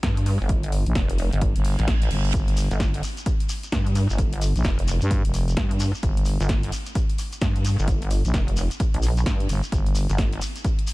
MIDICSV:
0, 0, Header, 1, 6, 480
1, 0, Start_track
1, 0, Key_signature, -2, "minor"
1, 0, Tempo, 461538
1, 512, Time_signature, 4, 2, 24, 8
1, 11371, End_track
2, 0, Start_track
2, 0, Title_t, "FM bass"
2, 0, Program_c, 0, 39
2, 899, Note_on_c, 0, 34, 92
2, 977, Note_off_c, 0, 34, 0
2, 1619, Note_on_c, 0, 31, 97
2, 1836, Note_off_c, 0, 31, 0
2, 2191, Note_on_c, 0, 31, 99
2, 2417, Note_off_c, 0, 31, 0
2, 2432, Note_on_c, 0, 31, 99
2, 2796, Note_off_c, 0, 31, 0
2, 4739, Note_on_c, 0, 34, 96
2, 4817, Note_off_c, 0, 34, 0
2, 5219, Note_on_c, 0, 43, 96
2, 5436, Note_off_c, 0, 43, 0
2, 5459, Note_on_c, 0, 29, 96
2, 5777, Note_off_c, 0, 29, 0
2, 6272, Note_on_c, 0, 31, 99
2, 6636, Note_off_c, 0, 31, 0
2, 8579, Note_on_c, 0, 34, 96
2, 8657, Note_off_c, 0, 34, 0
2, 9872, Note_on_c, 0, 31, 96
2, 9996, Note_off_c, 0, 31, 0
2, 10112, Note_on_c, 0, 31, 100
2, 10476, Note_off_c, 0, 31, 0
2, 11371, End_track
3, 0, Start_track
3, 0, Title_t, "Wobble bass"
3, 0, Program_c, 1, 39
3, 32, Note_on_c, 1, 43, 101
3, 396, Note_off_c, 1, 43, 0
3, 420, Note_on_c, 1, 31, 98
3, 876, Note_off_c, 1, 31, 0
3, 992, Note_on_c, 1, 29, 99
3, 1356, Note_off_c, 1, 29, 0
3, 1380, Note_on_c, 1, 31, 96
3, 1596, Note_off_c, 1, 31, 0
3, 1860, Note_on_c, 1, 33, 104
3, 2177, Note_off_c, 1, 33, 0
3, 2820, Note_on_c, 1, 31, 98
3, 3137, Note_off_c, 1, 31, 0
3, 3872, Note_on_c, 1, 43, 100
3, 4236, Note_off_c, 1, 43, 0
3, 4259, Note_on_c, 1, 31, 97
3, 4716, Note_off_c, 1, 31, 0
3, 4832, Note_on_c, 1, 29, 97
3, 5196, Note_off_c, 1, 29, 0
3, 5792, Note_on_c, 1, 43, 100
3, 6156, Note_off_c, 1, 43, 0
3, 6659, Note_on_c, 1, 31, 98
3, 6977, Note_off_c, 1, 31, 0
3, 7712, Note_on_c, 1, 43, 100
3, 8076, Note_off_c, 1, 43, 0
3, 8100, Note_on_c, 1, 31, 101
3, 8556, Note_off_c, 1, 31, 0
3, 8672, Note_on_c, 1, 29, 95
3, 9036, Note_off_c, 1, 29, 0
3, 9300, Note_on_c, 1, 34, 104
3, 9617, Note_off_c, 1, 34, 0
3, 9632, Note_on_c, 1, 43, 98
3, 9857, Note_off_c, 1, 43, 0
3, 10499, Note_on_c, 1, 31, 100
3, 10817, Note_off_c, 1, 31, 0
3, 11371, End_track
4, 0, Start_track
4, 0, Title_t, "Reverse cymbal"
4, 0, Program_c, 2, 119
4, 1472, Note_on_c, 2, 60, 59
4, 2432, Note_off_c, 2, 60, 0
4, 11371, End_track
5, 0, Start_track
5, 0, Title_t, "Shekere"
5, 2436, Note_on_c, 9, 82, 42
5, 2540, Note_off_c, 9, 82, 0
5, 2671, Note_on_c, 9, 82, 98
5, 2775, Note_off_c, 9, 82, 0
5, 2821, Note_on_c, 9, 82, 50
5, 2924, Note_off_c, 9, 82, 0
5, 2924, Note_on_c, 9, 82, 42
5, 3028, Note_off_c, 9, 82, 0
5, 3159, Note_on_c, 9, 82, 101
5, 3263, Note_off_c, 9, 82, 0
5, 3303, Note_on_c, 9, 82, 51
5, 3393, Note_off_c, 9, 82, 0
5, 3393, Note_on_c, 9, 82, 38
5, 3497, Note_off_c, 9, 82, 0
5, 3631, Note_on_c, 9, 82, 101
5, 3735, Note_off_c, 9, 82, 0
5, 3782, Note_on_c, 9, 82, 52
5, 3874, Note_off_c, 9, 82, 0
5, 3874, Note_on_c, 9, 82, 40
5, 3978, Note_off_c, 9, 82, 0
5, 4112, Note_on_c, 9, 82, 97
5, 4216, Note_off_c, 9, 82, 0
5, 4260, Note_on_c, 9, 82, 59
5, 4352, Note_off_c, 9, 82, 0
5, 4352, Note_on_c, 9, 82, 43
5, 4456, Note_off_c, 9, 82, 0
5, 4593, Note_on_c, 9, 82, 99
5, 4697, Note_off_c, 9, 82, 0
5, 4745, Note_on_c, 9, 82, 51
5, 4819, Note_off_c, 9, 82, 0
5, 4819, Note_on_c, 9, 82, 45
5, 4923, Note_off_c, 9, 82, 0
5, 5072, Note_on_c, 9, 82, 104
5, 5176, Note_off_c, 9, 82, 0
5, 5213, Note_on_c, 9, 82, 50
5, 5317, Note_off_c, 9, 82, 0
5, 5317, Note_on_c, 9, 82, 42
5, 5421, Note_off_c, 9, 82, 0
5, 5554, Note_on_c, 9, 82, 100
5, 5658, Note_off_c, 9, 82, 0
5, 5705, Note_on_c, 9, 82, 53
5, 5809, Note_off_c, 9, 82, 0
5, 6029, Note_on_c, 9, 82, 97
5, 6133, Note_off_c, 9, 82, 0
5, 6183, Note_on_c, 9, 82, 52
5, 6269, Note_off_c, 9, 82, 0
5, 6269, Note_on_c, 9, 82, 43
5, 6373, Note_off_c, 9, 82, 0
5, 6501, Note_on_c, 9, 82, 95
5, 6605, Note_off_c, 9, 82, 0
5, 6665, Note_on_c, 9, 82, 60
5, 6746, Note_off_c, 9, 82, 0
5, 6746, Note_on_c, 9, 82, 44
5, 6850, Note_off_c, 9, 82, 0
5, 6995, Note_on_c, 9, 82, 100
5, 7099, Note_off_c, 9, 82, 0
5, 7133, Note_on_c, 9, 82, 55
5, 7237, Note_off_c, 9, 82, 0
5, 7238, Note_on_c, 9, 82, 42
5, 7342, Note_off_c, 9, 82, 0
5, 7472, Note_on_c, 9, 82, 93
5, 7576, Note_off_c, 9, 82, 0
5, 7615, Note_on_c, 9, 82, 53
5, 7710, Note_off_c, 9, 82, 0
5, 7710, Note_on_c, 9, 82, 43
5, 7814, Note_off_c, 9, 82, 0
5, 7957, Note_on_c, 9, 82, 105
5, 8061, Note_off_c, 9, 82, 0
5, 8098, Note_on_c, 9, 82, 63
5, 8193, Note_off_c, 9, 82, 0
5, 8193, Note_on_c, 9, 82, 47
5, 8297, Note_off_c, 9, 82, 0
5, 8431, Note_on_c, 9, 82, 90
5, 8535, Note_off_c, 9, 82, 0
5, 8581, Note_on_c, 9, 82, 51
5, 8676, Note_off_c, 9, 82, 0
5, 8676, Note_on_c, 9, 82, 40
5, 8780, Note_off_c, 9, 82, 0
5, 8909, Note_on_c, 9, 82, 91
5, 9013, Note_off_c, 9, 82, 0
5, 9057, Note_on_c, 9, 82, 56
5, 9150, Note_off_c, 9, 82, 0
5, 9150, Note_on_c, 9, 82, 42
5, 9254, Note_off_c, 9, 82, 0
5, 9384, Note_on_c, 9, 82, 85
5, 9488, Note_off_c, 9, 82, 0
5, 9536, Note_on_c, 9, 82, 55
5, 9633, Note_off_c, 9, 82, 0
5, 9633, Note_on_c, 9, 82, 39
5, 9737, Note_off_c, 9, 82, 0
5, 9872, Note_on_c, 9, 82, 97
5, 9976, Note_off_c, 9, 82, 0
5, 10016, Note_on_c, 9, 82, 59
5, 10119, Note_off_c, 9, 82, 0
5, 10119, Note_on_c, 9, 82, 45
5, 10223, Note_off_c, 9, 82, 0
5, 10348, Note_on_c, 9, 82, 90
5, 10452, Note_off_c, 9, 82, 0
5, 10498, Note_on_c, 9, 82, 50
5, 10587, Note_off_c, 9, 82, 0
5, 10587, Note_on_c, 9, 82, 42
5, 10691, Note_off_c, 9, 82, 0
5, 10832, Note_on_c, 9, 82, 106
5, 10936, Note_off_c, 9, 82, 0
5, 10979, Note_on_c, 9, 82, 53
5, 11082, Note_off_c, 9, 82, 0
5, 11082, Note_on_c, 9, 82, 42
5, 11186, Note_off_c, 9, 82, 0
5, 11305, Note_on_c, 9, 82, 93
5, 11371, Note_off_c, 9, 82, 0
5, 11371, End_track
6, 0, Start_track
6, 0, Title_t, "Drums"
6, 31, Note_on_c, 9, 38, 115
6, 31, Note_on_c, 9, 42, 80
6, 32, Note_on_c, 9, 36, 110
6, 135, Note_off_c, 9, 38, 0
6, 135, Note_off_c, 9, 42, 0
6, 136, Note_off_c, 9, 36, 0
6, 179, Note_on_c, 9, 42, 52
6, 271, Note_on_c, 9, 46, 86
6, 283, Note_off_c, 9, 42, 0
6, 375, Note_off_c, 9, 46, 0
6, 511, Note_on_c, 9, 42, 79
6, 512, Note_on_c, 9, 36, 112
6, 615, Note_off_c, 9, 42, 0
6, 616, Note_off_c, 9, 36, 0
6, 659, Note_on_c, 9, 42, 57
6, 752, Note_on_c, 9, 46, 107
6, 763, Note_off_c, 9, 42, 0
6, 856, Note_off_c, 9, 46, 0
6, 899, Note_on_c, 9, 42, 37
6, 992, Note_off_c, 9, 42, 0
6, 992, Note_on_c, 9, 36, 114
6, 992, Note_on_c, 9, 38, 120
6, 992, Note_on_c, 9, 42, 82
6, 1096, Note_off_c, 9, 36, 0
6, 1096, Note_off_c, 9, 38, 0
6, 1096, Note_off_c, 9, 42, 0
6, 1139, Note_on_c, 9, 42, 55
6, 1231, Note_on_c, 9, 46, 87
6, 1243, Note_off_c, 9, 42, 0
6, 1335, Note_off_c, 9, 46, 0
6, 1379, Note_on_c, 9, 42, 37
6, 1471, Note_off_c, 9, 42, 0
6, 1471, Note_on_c, 9, 42, 81
6, 1472, Note_on_c, 9, 36, 126
6, 1575, Note_off_c, 9, 42, 0
6, 1576, Note_off_c, 9, 36, 0
6, 1619, Note_on_c, 9, 42, 54
6, 1711, Note_on_c, 9, 46, 106
6, 1723, Note_off_c, 9, 42, 0
6, 1815, Note_off_c, 9, 46, 0
6, 1860, Note_on_c, 9, 38, 38
6, 1860, Note_on_c, 9, 42, 38
6, 1952, Note_off_c, 9, 38, 0
6, 1952, Note_off_c, 9, 42, 0
6, 1952, Note_on_c, 9, 36, 123
6, 1952, Note_on_c, 9, 38, 125
6, 1952, Note_on_c, 9, 42, 87
6, 2056, Note_off_c, 9, 36, 0
6, 2056, Note_off_c, 9, 38, 0
6, 2056, Note_off_c, 9, 42, 0
6, 2099, Note_on_c, 9, 42, 54
6, 2192, Note_on_c, 9, 46, 86
6, 2203, Note_off_c, 9, 42, 0
6, 2296, Note_off_c, 9, 46, 0
6, 2339, Note_on_c, 9, 42, 37
6, 2431, Note_off_c, 9, 42, 0
6, 2431, Note_on_c, 9, 42, 81
6, 2432, Note_on_c, 9, 36, 115
6, 2535, Note_off_c, 9, 42, 0
6, 2536, Note_off_c, 9, 36, 0
6, 2579, Note_on_c, 9, 42, 56
6, 2672, Note_on_c, 9, 46, 109
6, 2683, Note_off_c, 9, 42, 0
6, 2776, Note_off_c, 9, 46, 0
6, 2820, Note_on_c, 9, 42, 38
6, 2912, Note_off_c, 9, 42, 0
6, 2912, Note_on_c, 9, 36, 123
6, 2912, Note_on_c, 9, 38, 121
6, 2912, Note_on_c, 9, 42, 77
6, 3016, Note_off_c, 9, 36, 0
6, 3016, Note_off_c, 9, 38, 0
6, 3016, Note_off_c, 9, 42, 0
6, 3059, Note_on_c, 9, 42, 55
6, 3152, Note_on_c, 9, 46, 91
6, 3163, Note_off_c, 9, 42, 0
6, 3256, Note_off_c, 9, 46, 0
6, 3299, Note_on_c, 9, 42, 37
6, 3392, Note_off_c, 9, 42, 0
6, 3392, Note_on_c, 9, 36, 127
6, 3392, Note_on_c, 9, 42, 82
6, 3496, Note_off_c, 9, 36, 0
6, 3496, Note_off_c, 9, 42, 0
6, 3540, Note_on_c, 9, 42, 55
6, 3632, Note_on_c, 9, 46, 105
6, 3644, Note_off_c, 9, 42, 0
6, 3736, Note_off_c, 9, 46, 0
6, 3780, Note_on_c, 9, 42, 39
6, 3872, Note_off_c, 9, 42, 0
6, 3872, Note_on_c, 9, 36, 121
6, 3872, Note_on_c, 9, 38, 127
6, 3872, Note_on_c, 9, 42, 84
6, 3976, Note_off_c, 9, 36, 0
6, 3976, Note_off_c, 9, 38, 0
6, 3976, Note_off_c, 9, 42, 0
6, 4020, Note_on_c, 9, 42, 54
6, 4112, Note_on_c, 9, 46, 92
6, 4124, Note_off_c, 9, 42, 0
6, 4216, Note_off_c, 9, 46, 0
6, 4352, Note_on_c, 9, 36, 120
6, 4352, Note_on_c, 9, 42, 78
6, 4456, Note_off_c, 9, 36, 0
6, 4456, Note_off_c, 9, 42, 0
6, 4499, Note_on_c, 9, 42, 54
6, 4592, Note_on_c, 9, 46, 116
6, 4603, Note_off_c, 9, 42, 0
6, 4696, Note_off_c, 9, 46, 0
6, 4740, Note_on_c, 9, 42, 38
6, 4832, Note_off_c, 9, 42, 0
6, 4832, Note_on_c, 9, 36, 124
6, 4832, Note_on_c, 9, 38, 122
6, 4832, Note_on_c, 9, 42, 77
6, 4936, Note_off_c, 9, 36, 0
6, 4936, Note_off_c, 9, 38, 0
6, 4936, Note_off_c, 9, 42, 0
6, 4980, Note_on_c, 9, 42, 54
6, 5072, Note_on_c, 9, 46, 91
6, 5084, Note_off_c, 9, 42, 0
6, 5176, Note_off_c, 9, 46, 0
6, 5219, Note_on_c, 9, 42, 37
6, 5311, Note_off_c, 9, 42, 0
6, 5311, Note_on_c, 9, 42, 83
6, 5312, Note_on_c, 9, 36, 127
6, 5415, Note_off_c, 9, 42, 0
6, 5416, Note_off_c, 9, 36, 0
6, 5459, Note_on_c, 9, 42, 54
6, 5551, Note_on_c, 9, 46, 111
6, 5563, Note_off_c, 9, 42, 0
6, 5655, Note_off_c, 9, 46, 0
6, 5699, Note_on_c, 9, 42, 38
6, 5791, Note_off_c, 9, 42, 0
6, 5791, Note_on_c, 9, 36, 123
6, 5791, Note_on_c, 9, 42, 81
6, 5792, Note_on_c, 9, 38, 127
6, 5895, Note_off_c, 9, 36, 0
6, 5895, Note_off_c, 9, 42, 0
6, 5896, Note_off_c, 9, 38, 0
6, 5939, Note_on_c, 9, 42, 53
6, 6031, Note_on_c, 9, 46, 92
6, 6043, Note_off_c, 9, 42, 0
6, 6135, Note_off_c, 9, 46, 0
6, 6271, Note_on_c, 9, 36, 127
6, 6271, Note_on_c, 9, 42, 75
6, 6375, Note_off_c, 9, 36, 0
6, 6375, Note_off_c, 9, 42, 0
6, 6419, Note_on_c, 9, 42, 54
6, 6511, Note_on_c, 9, 46, 117
6, 6523, Note_off_c, 9, 42, 0
6, 6615, Note_off_c, 9, 46, 0
6, 6659, Note_on_c, 9, 42, 36
6, 6751, Note_off_c, 9, 42, 0
6, 6751, Note_on_c, 9, 36, 127
6, 6751, Note_on_c, 9, 42, 77
6, 6752, Note_on_c, 9, 38, 123
6, 6855, Note_off_c, 9, 36, 0
6, 6855, Note_off_c, 9, 42, 0
6, 6856, Note_off_c, 9, 38, 0
6, 6899, Note_on_c, 9, 42, 51
6, 6992, Note_on_c, 9, 46, 100
6, 7003, Note_off_c, 9, 42, 0
6, 7096, Note_off_c, 9, 46, 0
6, 7139, Note_on_c, 9, 42, 35
6, 7231, Note_off_c, 9, 42, 0
6, 7231, Note_on_c, 9, 42, 77
6, 7232, Note_on_c, 9, 36, 127
6, 7335, Note_off_c, 9, 42, 0
6, 7336, Note_off_c, 9, 36, 0
6, 7379, Note_on_c, 9, 42, 52
6, 7471, Note_on_c, 9, 46, 111
6, 7483, Note_off_c, 9, 42, 0
6, 7575, Note_off_c, 9, 46, 0
6, 7619, Note_on_c, 9, 42, 37
6, 7712, Note_off_c, 9, 42, 0
6, 7712, Note_on_c, 9, 36, 127
6, 7712, Note_on_c, 9, 38, 127
6, 7712, Note_on_c, 9, 42, 82
6, 7816, Note_off_c, 9, 36, 0
6, 7816, Note_off_c, 9, 38, 0
6, 7816, Note_off_c, 9, 42, 0
6, 7859, Note_on_c, 9, 42, 50
6, 7952, Note_on_c, 9, 46, 97
6, 7963, Note_off_c, 9, 42, 0
6, 8056, Note_off_c, 9, 46, 0
6, 8192, Note_on_c, 9, 36, 121
6, 8192, Note_on_c, 9, 42, 78
6, 8296, Note_off_c, 9, 36, 0
6, 8296, Note_off_c, 9, 42, 0
6, 8340, Note_on_c, 9, 42, 51
6, 8432, Note_on_c, 9, 46, 112
6, 8444, Note_off_c, 9, 42, 0
6, 8536, Note_off_c, 9, 46, 0
6, 8579, Note_on_c, 9, 42, 34
6, 8672, Note_off_c, 9, 42, 0
6, 8672, Note_on_c, 9, 36, 122
6, 8672, Note_on_c, 9, 38, 111
6, 8672, Note_on_c, 9, 42, 76
6, 8776, Note_off_c, 9, 36, 0
6, 8776, Note_off_c, 9, 38, 0
6, 8776, Note_off_c, 9, 42, 0
6, 8820, Note_on_c, 9, 42, 49
6, 8912, Note_on_c, 9, 46, 98
6, 8924, Note_off_c, 9, 42, 0
6, 9016, Note_off_c, 9, 46, 0
6, 9060, Note_on_c, 9, 42, 36
6, 9152, Note_off_c, 9, 42, 0
6, 9152, Note_on_c, 9, 36, 127
6, 9152, Note_on_c, 9, 42, 76
6, 9256, Note_off_c, 9, 36, 0
6, 9256, Note_off_c, 9, 42, 0
6, 9300, Note_on_c, 9, 42, 51
6, 9392, Note_on_c, 9, 46, 109
6, 9404, Note_off_c, 9, 42, 0
6, 9496, Note_off_c, 9, 46, 0
6, 9539, Note_on_c, 9, 42, 35
6, 9632, Note_off_c, 9, 42, 0
6, 9632, Note_on_c, 9, 36, 127
6, 9632, Note_on_c, 9, 38, 119
6, 9632, Note_on_c, 9, 42, 74
6, 9736, Note_off_c, 9, 36, 0
6, 9736, Note_off_c, 9, 38, 0
6, 9736, Note_off_c, 9, 42, 0
6, 9780, Note_on_c, 9, 42, 49
6, 9872, Note_on_c, 9, 46, 99
6, 9884, Note_off_c, 9, 42, 0
6, 9976, Note_off_c, 9, 46, 0
6, 10112, Note_on_c, 9, 36, 119
6, 10112, Note_on_c, 9, 42, 77
6, 10216, Note_off_c, 9, 36, 0
6, 10216, Note_off_c, 9, 42, 0
6, 10259, Note_on_c, 9, 42, 53
6, 10351, Note_on_c, 9, 46, 107
6, 10363, Note_off_c, 9, 42, 0
6, 10455, Note_off_c, 9, 46, 0
6, 10499, Note_on_c, 9, 42, 35
6, 10591, Note_off_c, 9, 42, 0
6, 10591, Note_on_c, 9, 36, 123
6, 10591, Note_on_c, 9, 42, 74
6, 10592, Note_on_c, 9, 38, 113
6, 10695, Note_off_c, 9, 36, 0
6, 10695, Note_off_c, 9, 42, 0
6, 10696, Note_off_c, 9, 38, 0
6, 10739, Note_on_c, 9, 42, 51
6, 10831, Note_on_c, 9, 46, 91
6, 10843, Note_off_c, 9, 42, 0
6, 10935, Note_off_c, 9, 46, 0
6, 10979, Note_on_c, 9, 42, 37
6, 11071, Note_off_c, 9, 42, 0
6, 11071, Note_on_c, 9, 36, 127
6, 11071, Note_on_c, 9, 42, 77
6, 11175, Note_off_c, 9, 36, 0
6, 11175, Note_off_c, 9, 42, 0
6, 11218, Note_on_c, 9, 42, 51
6, 11311, Note_on_c, 9, 46, 108
6, 11322, Note_off_c, 9, 42, 0
6, 11371, Note_off_c, 9, 46, 0
6, 11371, End_track
0, 0, End_of_file